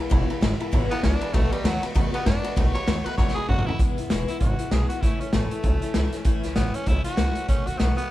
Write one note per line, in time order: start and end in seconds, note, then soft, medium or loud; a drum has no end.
0.00 0.07 B5 medium
0.09 0.25 E1 loud
0.09 0.29 E2 medium
0.09 0.29 B2 loud
0.09 0.28 E3 medium
0.09 0.28 G#3 medium
0.09 0.27 B3 loud
0.09 0.26 E4 loud
0.09 0.22 E5 loud
0.09 0.22 G#5 loud
0.09 0.23 B5 loud
0.09 kick loud
0.09 ride medium
0.27 0.40 E3 soft
0.27 0.40 G#3 soft
0.27 0.41 B3 medium
0.27 0.41 E4 medium
0.27 0.37 E5 medium
0.27 0.38 G#5 medium
0.27 0.38 B5 loud
0.27 ride medium
0.41 0.55 G#1 loud
0.41 0.60 E3 medium
0.41 0.59 G#3 medium
0.41 0.59 B3 medium
0.41 0.58 E4 medium
0.41 0.53 E5 medium
0.41 0.53 G#5 medium
0.41 0.54 B5 loud
0.41 snare loud
0.41 ride medium
0.59 0.71 E3 soft
0.59 0.71 G#3 medium
0.59 0.71 B3 medium
0.59 0.72 E4 medium
0.59 0.68 E5 medium
0.59 0.68 G#5 medium
0.59 0.68 B5 medium
0.59 muted upright bass stroke medium
0.59 ride medium
0.72 0.86 A1 loud
0.72 0.90 E2 medium
0.72 0.90 B2 medium
0.72 0.91 E3 loud
0.72 0.90 G#3 loud
0.72 0.90 B3 loud
0.72 0.89 E4 loud
0.72 0.84 E5 loud
0.72 0.84 G#5 loud
0.72 0.84 B5 loud
0.72 kick loud
0.72 ride medium
0.90 1.01 E3 soft
0.90 1.02 G#3 medium
0.90 1.02 B3 loud
0.90 1.03 B3 soft
0.90 1.03 E4 medium
0.90 0.98 E5 medium
0.90 0.99 G#5 medium
0.90 0.99 B5 medium
0.90 ride medium
1.02 1.17 C#2 loud
1.02 1.21 E3 medium
1.02 1.21 G#3 medium
1.02 1.21 B3 medium
1.02 1.35 D4 loud
1.02 1.20 E4 medium
1.02 1.14 E5 medium
1.02 1.14 G#5 medium
1.02 1.15 B5 medium
1.02 kick medium
1.02 snare loud
1.02 ride medium
1.21 1.33 E3 medium
1.21 1.33 G#3 medium
1.21 1.33 B3 medium
1.21 1.34 E4 medium
1.21 1.29 E5 medium
1.21 1.29 G#5 medium
1.21 1.30 B5 medium
1.21 ride medium
1.33 1.48 B1 medium
1.33 1.52 B2 medium
1.33 1.52 D#3 medium
1.33 1.53 A3 medium
1.33 1.51 A3 medium
1.33 1.50 B3 medium
1.33 1.49 F#4 loud
1.33 1.45 D#5 medium
1.33 1.45 F#5 medium
1.33 1.45 B5 loud
1.33 kick loud
1.33 ride loud
1.51 1.67 G3 medium
1.51 1.63 A3 soft
1.51 1.64 B3 soft
1.51 1.64 F#4 soft
1.51 1.59 D#5 medium
1.51 1.60 F#5 medium
1.51 1.60 B5 medium
1.51 muted upright bass stroke medium
1.51 ride medium
1.63 1.78 D#2 medium
1.63 1.82 D#3 medium
1.63 1.83 F#3 loud
1.63 1.83 A3 medium
1.63 1.82 B3 medium
1.63 1.81 F#4 medium
1.63 1.75 D#5 medium
1.63 1.75 F#5 medium
1.63 1.76 B5 medium
1.63 snare loud
1.63 ride medium
1.82 1.94 A3 soft
1.82 1.94 B3 soft
1.82 1.94 F#4 medium
1.82 1.90 D#5 medium
1.82 1.90 F#5 medium
1.82 1.91 B5 medium
1.82 muted upright bass stroke medium
1.82 snare soft
1.82 ride medium
1.94 2.09 E2 loud
1.94 2.13 B2 medium
1.94 2.13 D#3 loud
1.94 2.13 A3 loud
1.94 2.12 B3 loud
1.94 2.11 F#4 medium
1.94 2.06 D#5 loud
1.94 2.06 F#5 medium
1.94 2.07 B5 loud
1.94 kick loud
1.94 ride loud
2.12 2.25 A3 soft
2.12 2.26 B3 medium
2.12 2.26 F#4 medium
2.12 2.21 D#5 medium
2.12 2.21 F#5 medium
2.12 2.22 B5 medium
2.12 muted upright bass stroke medium
2.12 ride medium
2.25 2.40 F#2 medium
2.25 2.44 D#3 medium
2.25 2.43 A3 medium
2.25 2.43 B3 medium
2.25 2.56 D4 loud
2.25 2.42 F#4 medium
2.25 2.37 D#5 medium
2.25 2.37 F#5 medium
2.25 2.37 B5 medium
2.25 kick medium
2.25 snare loud
2.25 ride medium
2.43 2.56 A3 soft
2.43 2.56 B3 medium
2.43 2.56 F#4 medium
2.43 2.51 D#5 medium
2.43 2.52 F#5 medium
2.43 2.52 B5 medium
2.43 ride medium
2.56 2.70 B1 loud
2.56 2.74 B2 medium
2.56 2.75 D#3 loud
2.56 2.75 A3 medium
2.56 2.74 B3 medium
2.56 2.73 F#4 medium
2.56 2.68 D#5 medium
2.56 2.68 F#5 medium
2.56 2.68 B5 loud
2.56 kick loud
2.56 ride loud
2.74 2.86 A3 soft
2.74 2.87 B3 soft
2.74 2.87 F#4 soft
2.74 3.06 C#5 loud
2.74 2.82 D#5 medium
2.74 2.82 F#5 medium
2.74 2.83 B5 medium
2.74 muted upright bass stroke medium
2.74 ride medium
2.87 3.01 D#2 medium
2.87 3.05 D#3 medium
2.87 3.06 A3 medium
2.87 3.05 B3 medium
2.87 3.04 F#4 medium
2.87 2.98 D#5 medium
2.87 2.98 F#5 medium
2.87 2.99 B5 medium
2.87 snare loud
2.87 ride medium
3.05 3.18 A3 soft
3.05 3.18 B3 medium
3.05 3.18 F#4 medium
3.05 3.17 B4 medium
3.05 3.13 D#5 medium
3.05 3.13 F#5 medium
3.05 3.14 B5 medium
3.05 muted upright bass stroke medium
3.05 ride medium
3.17 3.32 E2 loud
3.17 3.36 B2 medium
3.17 3.36 D#3 medium
3.17 3.37 A3 medium
3.17 3.37 B3 medium
3.17 3.35 F#4 loud
3.17 3.34 C#5 medium
3.17 3.29 D#5 medium
3.17 3.29 F#5 medium
3.17 3.29 B5 loud
3.17 kick loud
3.17 snare medium
3.28 snare medium
3.34 3.50 B3 medium
3.34 3.49 F#4 medium
3.34 3.47 G#4 loud
3.34 3.43 D#5 medium
3.34 3.44 F#5 medium
3.34 3.44 B5 medium
3.34 muted upright bass stroke medium
3.39 3.49 A3 soft
3.48 3.63 F#2 medium
3.48 3.67 D#3 medium
3.48 3.67 A3 medium
3.48 3.66 B3 medium
3.48 3.68 F#4 loud
3.48 3.66 F#4 medium
3.48 3.59 D#5 medium
3.48 3.60 F#5 medium
3.48 3.60 B5 medium
3.48 kick medium
3.48 mid tom medium
3.59 mid tom medium
3.66 3.80 A3 soft
3.66 3.80 B3 soft
3.66 3.79 E4 loud
3.66 3.79 F#4 medium
3.66 3.74 D#5 medium
3.66 3.75 F#5 medium
3.66 3.75 B5 medium
3.66 muted upright bass stroke medium
3.66 floor tom medium
3.79 3.96 E1 medium
3.79 3.98 E2 medium
3.79 3.98 B2 medium
3.79 3.98 E3 medium
3.79 3.98 G#3 medium
3.79 3.97 B3 medium
3.79 3.96 E4 medium
3.79 kick loud
3.79 closed hi-hat medium
3.97 4.10 G#1 medium
3.97 4.09 E3 soft
3.97 4.10 G#3 soft
3.97 4.10 B3 medium
3.97 4.10 E4 medium
3.97 closed hi-hat medium
4.10 4.27 E1 medium
4.10 4.28 E2 medium
4.10 4.28 B2 medium
4.10 4.28 E3 medium
4.10 4.28 G#3 medium
4.10 4.28 B3 medium
4.10 4.27 E4 medium
4.10 snare loud
4.10 closed hi-hat medium
4.28 4.40 E3 soft
4.28 4.41 G#3 soft
4.28 4.41 B3 soft
4.28 4.41 E4 medium
4.28 4.39 E4 medium
4.28 closed hi-hat medium
4.40 4.58 G#1 medium
4.40 4.59 E3 medium
4.40 4.59 G#3 medium
4.40 4.59 B3 medium
4.40 4.58 E4 medium
4.40 4.73 F#4 medium
4.40 kick loud
4.40 closed hi-hat medium
4.59 4.71 E3 soft
4.59 4.72 G#3 soft
4.59 4.72 B3 soft
4.59 4.72 E4 medium
4.59 muted upright bass stroke medium
4.59 closed hi-hat medium
4.71 4.88 B1 medium
4.71 4.90 E2 medium
4.71 4.90 B2 medium
4.71 4.90 E3 medium
4.71 4.90 G#3 medium
4.71 4.89 B3 medium
4.71 4.88 E4 medium
4.71 4.88 G#4 medium
4.71 snare loud
4.71 closed hi-hat medium
4.88 5.02 E3 soft
4.88 5.03 G#3 soft
4.88 5.03 B3 medium
4.88 5.02 E4 medium
4.88 5.02 F#4 medium
4.88 closed hi-hat medium
5.01 5.19 A1 loud
5.01 5.21 A2 medium
5.01 5.21 E3 medium
5.01 5.21 A3 medium
5.01 5.21 C#4 medium
5.01 5.21 E4 medium
5.01 5.19 E4 medium
5.01 kick loud
5.01 snare soft
5.01 closed hi-hat medium
5.20 5.32 C#2 medium
5.20 5.33 A3 soft
5.20 5.34 C#4 medium
5.20 5.33 C#4 soft
5.20 5.33 E4 medium
5.20 closed hi-hat medium
5.32 5.50 A1 medium
5.32 5.51 A2 medium
5.32 5.52 E3 medium
5.32 6.22 A3 medium
5.32 5.52 A3 medium
5.32 5.50 C#4 medium
5.32 5.49 E4 medium
5.32 snare loud
5.32 closed hi-hat medium
5.51 5.62 A3 soft
5.51 5.63 C#4 soft
5.51 5.63 E4 medium
5.51 closed hi-hat medium
5.63 5.81 C#2 medium
5.63 5.81 E3 medium
5.63 5.82 A3 medium
5.63 5.82 C#4 medium
5.63 5.80 E4 medium
5.63 kick loud
5.63 closed hi-hat medium
5.82 5.94 A3 soft
5.82 5.94 C#4 medium
5.82 5.94 E4 medium
5.82 closed hi-hat medium
5.94 6.12 C#2 medium
5.94 6.13 A2 medium
5.94 6.13 E3 medium
5.94 6.13 A3 medium
5.94 6.12 C#4 medium
5.94 6.11 E4 loud
5.94 snare loud
5.94 closed hi-hat medium
6.12 6.25 A3 soft
6.12 6.25 C#4 medium
6.12 6.25 E4 medium
6.12 snare soft
6.12 closed hi-hat medium
6.25 6.42 A1 medium
6.25 6.43 A2 loud
6.25 6.44 E3 medium
6.25 6.44 A3 medium
6.25 6.43 C#4 medium
6.25 6.42 E4 loud
6.25 kick loud
6.25 closed hi-hat medium
6.43 6.55 C#2 medium
6.43 6.56 A3 soft
6.43 6.56 C#4 medium
6.43 6.56 E4 medium
6.43 snare soft
6.43 closed hi-hat medium
6.56 6.73 A1 medium
6.56 6.74 A2 medium
6.56 6.75 E3 medium
6.56 6.75 A3 medium
6.56 6.76 B3 medium
6.56 6.75 C#4 medium
6.56 6.73 E4 medium
6.56 snare loud
6.56 closed hi-hat medium
6.74 6.87 A3 soft
6.74 6.89 C#4 medium
6.74 6.87 C#4 soft
6.74 6.87 E4 medium
6.74 closed hi-hat medium
6.86 7.04 C#2 loud
6.86 7.05 E3 medium
6.86 7.05 A3 medium
6.86 7.05 C#4 medium
6.86 7.04 E4 loud
6.86 7.04 E4 medium
6.86 kick loud
6.86 closed hi-hat medium
7.04 7.17 A3 soft
7.04 7.18 C#4 soft
7.04 7.18 E4 soft
7.04 7.47 F#4 loud
7.04 muted upright bass stroke medium
7.04 closed hi-hat medium
7.17 7.34 C#2 medium
7.17 7.36 A2 medium
7.17 7.36 E3 medium
7.17 7.36 A3 medium
7.17 7.36 C#4 medium
7.17 7.35 E4 medium
7.17 snare loud
7.17 closed hi-hat medium
7.35 7.48 A3 soft
7.35 7.49 C#4 soft
7.35 7.49 E4 medium
7.35 closed hi-hat medium
7.48 7.65 B1 medium
7.48 7.67 B2 medium
7.48 7.67 D#3 medium
7.48 7.67 A3 medium
7.48 7.66 B3 medium
7.48 7.68 C#4 medium
7.48 7.65 F#4 medium
7.48 kick loud
7.48 closed hi-hat medium
7.66 7.79 D#2 loud
7.66 7.78 A3 soft
7.66 7.78 B3 soft
7.66 7.79 F#4 soft
7.66 7.80 F#4 medium
7.66 closed hi-hat medium
7.79 7.96 B1 medium
7.79 7.97 B2 medium
7.79 7.97 D#3 medium
7.79 7.97 A3 medium
7.79 7.96 B3 medium
7.79 7.95 F#4 medium
7.79 snare loud
7.79 closed hi-hat medium
7.96 8.09 A3 soft
7.96 8.11 B3 loud
7.96 8.09 B3 medium
7.96 8.09 F#4 medium
7.96 muted upright bass stroke medium
7.96 closed hi-hat medium